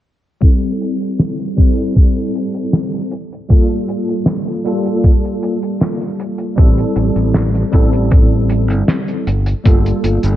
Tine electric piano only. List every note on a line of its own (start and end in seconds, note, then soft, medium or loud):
0.41 1.53 G3 medium
0.41 1.53 C4 medium
0.41 1.54 E4 medium
0.41 1.54 A4 medium
1.56 3.09 G3 medium
1.56 3.09 C4 medium
1.56 3.10 E4 medium
1.56 3.10 A4 medium
3.49 4.60 G3 medium
3.49 4.61 A#3 medium
3.49 4.61 F4 medium
3.49 4.62 A4 loud
4.64 6.53 G3 medium
4.64 6.53 A#3 medium
4.64 6.54 F4 medium
4.64 6.54 A4 loud
6.56 7.68 G3 medium
6.56 7.68 C4 medium
6.56 7.69 E4 medium
6.56 7.69 A4 loud
7.72 9.24 G3 medium
7.72 9.25 C4 medium
7.72 9.25 E4 medium
7.72 9.26 A4 loud
9.64 10.36 G3 medium
9.64 10.36 A#3 medium
9.64 10.36 F4 medium
9.64 10.36 A4 medium